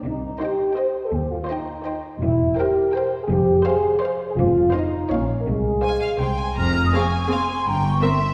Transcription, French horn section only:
0.05 0.40 D#4 medium
0.41 0.77 G4 soft
0.77 1.04 C5 medium
1.05 1.14 A4 medium
1.14 1.31 G4 medium
1.31 1.49 F4 medium
1.50 1.85 D#4 soft
2.23 2.56 E4 medium
2.59 2.94 G4 medium
2.94 3.21 C5 medium
3.22 3.26 G#4 medium
3.30 3.65 G4 medium
3.65 4.01 G#4 medium
4.01 4.13 C5 medium
4.30 4.34 G#4 medium
4.37 4.73 F4 medium
4.75 5.10 D#4 medium
5.11 5.23 C#4 medium
5.40 5.44 A#3 soft
5.48 6.20 G#3 medium

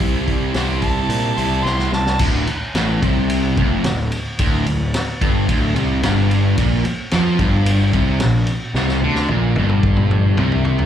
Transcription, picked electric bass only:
0.00 0.22 C2 medium
0.28 0.50 C2 medium
0.55 0.98 C2 medium
1.09 1.31 A#2 medium
1.38 1.60 C2 medium
1.66 1.87 C2 medium
1.93 2.15 C2 medium
2.20 2.46 D1 medium
2.48 muted picked electric bass stroke soft
2.75 3.00 A1 medium
3.02 3.53 C2 medium
3.57 3.82 F1 loud
3.85 4.10 D1 medium
4.39 4.65 D1 medium
4.68 4.92 D1 medium
5.22 5.47 G1 medium
5.49 5.74 D1 medium
5.76 6.01 C2 loud
6.03 6.54 G1 loud
6.58 6.83 A#1 medium
6.87 muted picked electric bass stroke soft
7.14 7.38 F2 medium
7.40 7.90 G1 medium
7.93 8.19 C2 loud
8.21 8.46 A#1 medium
8.74 9.00 C2 medium
9.02 9.27 D2 medium
9.29 9.54 A#1 medium
9.55 10.34 G1 medium
10.37 10.86 C2 medium

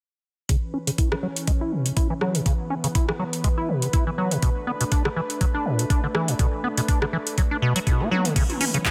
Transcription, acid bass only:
0.49 0.57 C#3 medium
0.74 0.78 C#4 medium
0.87 0.91 C#3 medium
0.98 1.09 E4 medium
1.12 1.16 E3 medium
1.23 1.27 F#3 medium
1.47 1.52 G#3 medium
1.61 1.74 E4 medium
1.72 1.87 B2 medium
1.86 1.92 C#3 medium
1.97 2.08 E4 medium
2.10 2.14 E3 medium
2.21 2.36 F#3 medium
2.35 2.41 B2 loud
2.46 2.53 C#3 medium
2.70 2.75 C#4 medium
2.84 2.88 C#3 medium
2.95 3.06 E4 medium
3.09 3.12 E3 medium
3.19 3.24 F#3 medium
3.44 3.49 G#3 medium
3.58 3.70 E4 medium
3.69 3.84 B2 medium
3.82 3.88 C#3 medium
3.93 4.05 E4 medium
4.07 4.11 E3 medium
4.18 4.33 F#3 medium
4.31 4.38 B2 loud
4.42 4.50 B2 medium
4.67 4.72 B3 medium
4.81 4.84 B2 medium
4.92 5.03 D4 medium
5.05 5.09 D3 medium
5.16 5.21 E3 medium
5.41 5.45 F#3 medium
5.54 5.67 D4 medium
5.65 5.80 A2 medium
5.79 5.85 B2 medium
5.90 6.01 D4 medium
6.04 6.07 D3 medium
6.15 6.30 E3 medium
6.28 6.34 A2 loud
6.39 6.47 B2 medium
6.64 6.68 B3 medium
6.77 6.81 B2 medium
6.88 7.00 D4 medium
7.02 7.06 D3 medium
7.13 7.18 E3 medium
7.38 7.42 F#3 medium
7.51 7.57 D4 medium
7.62 7.73 B2 loud
7.76 7.79 F#3 medium
7.87 8.02 B2 medium
8.00 8.10 B3 loud
8.11 8.27 F#3 loud
8.25 8.34 D3 medium
8.36 8.43 C#3 medium
8.61 8.65 C#4 medium
8.74 8.78 C#3 medium
8.85 8.91 E4 medium

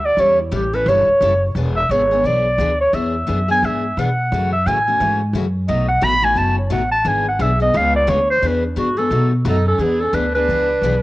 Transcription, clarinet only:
0.05 0.22 D5 medium
0.20 0.40 C#5 medium
0.41 0.56 E4 medium
0.55 0.76 G4 medium
0.75 0.90 B4 loud
0.88 1.42 C#5 medium
1.77 1.93 E5 loud
1.91 2.28 C#5 medium
2.27 2.80 D5 loud
2.81 2.96 C#5 medium
2.94 3.48 E5 medium
3.51 3.66 G#5 loud
3.65 4.00 E5 medium
3.99 4.51 F#5 medium
4.52 4.68 E5 loud
4.66 5.20 G#5 medium
5.69 5.87 D#5 medium
5.88 6.05 F#5 loud
6.04 6.26 B5 loud
6.25 6.39 G#5 loud
6.38 6.58 A5 loud
6.59 6.73 C#5 medium
6.72 6.91 F#5 medium
6.91 7.09 A5 loud
7.08 7.27 G#5 medium
7.28 7.43 F#5 medium
7.42 7.61 E5 medium
7.62 7.79 D#5 loud
7.77 7.95 F5 loud
7.96 8.11 D5 loud
8.10 8.29 C#5 medium
8.30 8.48 C5 loud
8.47 8.65 B4 medium
8.66 8.79 D4 medium
8.78 9.00 F#4 medium
8.98 9.32 A4 medium
9.49 9.66 A4 medium
9.68 9.82 A4 medium
9.80 10.02 G#4 medium
10.00 10.16 A4 medium
10.14 10.34 B4 medium
10.35 11.02 B4 medium

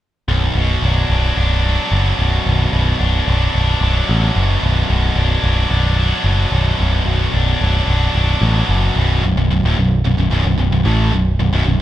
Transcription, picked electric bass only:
0.28 0.48 B0 medium
0.55 0.75 B0 medium
0.82 1.02 B0 medium
1.10 1.30 B0 medium
1.37 1.77 B0 medium
1.92 2.11 F#1 medium
2.19 2.39 B0 medium
2.46 2.66 B0 medium
2.73 2.93 B0 medium
3.00 3.20 B0 medium
3.28 3.47 B0 medium
3.55 3.75 B0 medium
3.81 4.01 B0 medium
4.09 4.29 A1 medium
4.36 4.56 F#1 medium
4.63 4.83 B0 medium
4.90 5.10 B0 medium
5.16 5.36 B0 medium
5.43 5.64 B0 medium
5.71 6.11 B0 medium
6.24 6.45 F#1 medium
6.52 6.72 B0 medium
6.80 7.00 B0 medium
7.05 7.26 B0 medium
7.34 7.54 B0 medium
7.61 7.81 B0 medium
7.88 8.08 B0 medium
8.15 8.35 B0 medium
8.41 8.61 A1 medium
8.69 8.89 F#1 medium
8.96 9.21 B0 medium
9.23 9.35 B0 medium
9.36 9.49 B0 medium
9.50 9.63 B0 medium
9.64 9.76 D1 medium
9.76 10.02 B0 medium
10.04 10.16 B0 medium
10.17 10.30 B0 medium
10.30 10.43 B0 medium
10.44 10.57 B0 medium
10.58 10.70 B0 medium
10.72 10.84 B0 medium
10.86 11.11 A1 medium
11.13 11.38 B0 medium
11.39 11.52 B0 medium
11.53 11.65 B0 loud
11.66 11.78 B0 medium
11.79 11.82 B0 medium

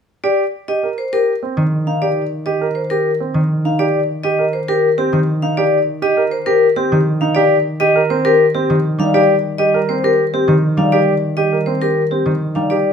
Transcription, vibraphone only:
0.24 0.43 D5 medium
0.68 0.87 D#5 medium
0.98 1.17 C5 medium
1.13 1.32 A#4 medium
1.87 2.06 F5 medium
2.02 2.21 D5 medium
2.46 2.65 D#5 medium
2.75 2.95 C5 soft
2.90 3.10 A#4 medium
3.65 3.84 F5 medium
3.79 3.99 D5 medium
4.23 4.43 D#5 medium
4.53 4.73 C5 medium
4.68 4.88 A#4 medium
4.98 5.18 G4 medium
5.42 5.62 F5 medium
5.57 5.77 D5 medium
6.02 6.22 D#5 medium
6.31 6.51 C5 medium
6.46 6.66 A#4 medium
6.76 6.96 G4 medium
7.21 7.40 F5 medium
7.35 7.55 D5 medium
7.80 8.00 D#5 medium
8.10 8.30 C5 medium
8.25 8.44 A#4 medium
8.55 8.74 G4 medium
9.00 9.19 F5 medium
9.14 9.34 D5 medium
9.58 9.78 D#5 medium
9.89 10.08 C5 medium
10.04 10.23 A#4 medium
10.34 10.53 G4 medium
10.78 10.97 F5 medium
10.92 11.12 D5 medium
11.37 11.56 D#5 medium
11.66 11.86 C5 medium
11.81 12.01 A#4 medium
12.11 12.31 G4 medium
12.55 12.75 F5 medium
12.70 12.90 D5 medium

